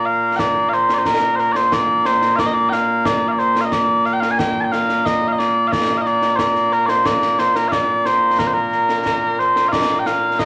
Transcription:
Already playing: A#2 A#3
0.06 F5
0.36 D5 G5, concert bass drum, snare
0.69 F5, snare
0.73 C5
0.89 snare
0.94 D5
0.98 C5
1.05 A#4, concert bass drum, snare
1.22 snare
1.36 A#4 C5, snare
1.52 C5 D5, snare
1.72 D5, concert bass drum, snare
2.05 C5, snare
2.22 snare
2.36 D5 F5, concert bass drum, snare
2.46 D#5
2.53 D5
2.69 F5 G5, snare
3.05 D5, concert bass drum, snare
3.28 D5 F5
3.39 C5, snare
3.56 snare
3.61 F5
3.65 D#5
3.72 D5, concert bass drum, snare
4.05 F5, snare
4.13 G5
4.20 F5, snare
4.31 G#5
4.38 G5, concert bass drum, snare
4.61 G5 A5
4.72 F5, snare
4.89 snare
5.06 D#5, concert bass drum, snare
5.28 F5
5.33 D#5
5.39 D5, snare
5.68 F5
5.72 D5, concert bass drum, snare
5.97 F5
6.02 D#5
6.06 D5, snare
6.22 snare
6.36 C5 D5, concert bass drum, snare
6.55 snare
6.72 A#4, snare
6.86 C5 D5, snare
7.05 D5, concert bass drum, snare
7.22 snare
7.39 C5, snare
7.56 A#4, snare
7.68 D5 F5, concert bass drum, snare
8.05 C5, snare
8.39 A#4, concert bass drum, snare
8.47 C5
8.54 A#4
8.72 snare
8.89 snare
9.06 concert bass drum, snare
9.39 C5, snare
9.56 snare
9.68 D5 F5
9.73 concert bass drum, snare
9.99 G5
10.06 F5, snare
10.39 D#5, concert bass drum, snare

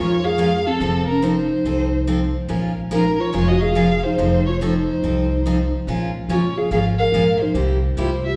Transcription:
Already playing: F2 F3 G#3 C#4 F4 A#4
0.00 C#5
0.24 G#4 F5
0.38 F3 G#3 C#4 F4 A#4
0.67 C4 A4
0.80 F1 F3 C4 D#4 A4
1.07 C#4 A#4
1.22 F3 C4 D#4 A4 C5
1.65 C2 F3 C4 D#4 A4
2.07 F3 C4 D#4 A4
2.48 A#1 F3 G#3 C#4 F4 A#4
2.91 F3 G#3 C#4 D#4 F4 A#4
3.19 F4 C#5
3.33 F1 F3 G#3 C#4 F4 A#4 C#5
3.48 F#4 D#5
3.61 G#4 F5
3.75 F3 G#3 C#4 F4 A#4
4.03 D#4 C5
4.18 F1 F3 C4 D#4 A4
4.46 F4 C#5
4.61 F3 C4 D#4 A4 C5
5.03 C2 F3 C4 D#4 A4
5.46 F3 C4 D#4 A4
5.87 A#1 F3 G#3 C#4 F4 A#4
6.28 F#1 F3 G#3 C#4 F4 F#4 A#4 C#5
6.36 F4
6.58 G#4 F5
6.71 G#1 F3 G#3 C#4 F4 G#4 A#4 F5
6.98 A#4 F5
7.12 A#1 F3 G#3 C#4 F4 A#4
7.40 D#4 C5
7.54 C2 C3 G3 A#3 E4 G4
7.97 C2 C3 G3 A#3 E4 G4 C5
8.01 F4
8.26 G4 E5

